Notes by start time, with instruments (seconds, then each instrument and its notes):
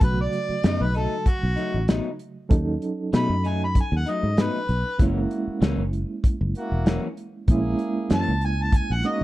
0.00 fingered electric bass B1, reed electric piano C#3 F#3 A3 F#4, harmonica B4, kick, closed hi-hat
0.21 harmonica D5
0.33 closed hi-hat
0.49 muted fingered electric bass stroke
0.63 fingered electric bass F#2, clean electric guitar B2 F#3 A3 D#4, snare, closed hi-hat
0.81 fingered electric bass B1, harmonica B4
0.94 clean electric guitar F#3 A3 D#4, harmonica A4, closed hi-hat
1.26 harmonica F#4, kick, closed hi-hat
1.43 fingered electric bass B1
1.56 clean electric guitar F#3 A3 D#4, closed hi-hat
1.74 fingered electric bass A1
1.88 clean electric guitar B2 F#3 A3 D#4, snare, closed hi-hat
2.19 closed hi-hat
2.49 fingered electric bass D#2, reed electric piano F#3 C#4 D#4 A4, kick, closed hi-hat
2.82 closed hi-hat
3.13 clean electric guitar B2 F#3 A3 D#4, fingered electric bass B2, harmonica B5, snare, closed hi-hat
3.29 fingered electric bass F#2
3.44 clean electric guitar F#3 A3 D#4, harmonica G#5, closed hi-hat
3.64 harmonica B5
3.75 kick, closed hi-hat
3.81 harmonica G#5
3.92 fingered electric bass D#2
3.96 harmonica F#5
4.06 clean electric guitar F#3 A3 D#4, harmonica D#5, closed hi-hat
4.23 fingered electric bass G#2
4.37 clean electric guitar B2 F#3 A3 D#4, snare, closed hi-hat
4.42 harmonica B4
4.69 fingered electric bass B1, closed hi-hat
4.98 fingered electric bass F#1, clean electric guitar F#2 E3 A#3 C#4, reed electric piano G#3 A#3 C#4 E4, horn section A#3 E4 F#4, kick, closed hi-hat
5.31 closed hi-hat
5.47 muted fingered electric bass stroke
5.61 fingered electric bass C#2, clean electric guitar F#2 E3 A#3 C#4, snare, closed hi-hat
5.78 fingered electric bass F#1
5.93 closed hi-hat
6.24 kick, closed hi-hat
6.41 fingered electric bass F#1
6.55 horn section A#3 E4 F#4, closed hi-hat
6.72 fingered electric bass E1
6.86 clean electric guitar F#2 E3 A#3 C#4, snare, closed hi-hat
7.17 closed hi-hat
7.48 fingered electric bass A#1, reed electric piano G#3 A#3 C#4 E4, horn section A#3 E4 G#4, kick, closed hi-hat
7.79 closed hi-hat
8.10 clean electric guitar F#2 E3 A#3 C#4, fingered electric bass F#2, harmonica A5, snare, closed hi-hat
8.28 fingered electric bass C#2
8.41 harmonica G#5, closed hi-hat
8.62 harmonica A5
8.72 harmonica G#5, kick, closed hi-hat
8.90 fingered electric bass A#1, harmonica F#5
9.03 reed electric piano G#3 A#3 C#4 D#4, horn section A#3 F#4, harmonica D#5, closed hi-hat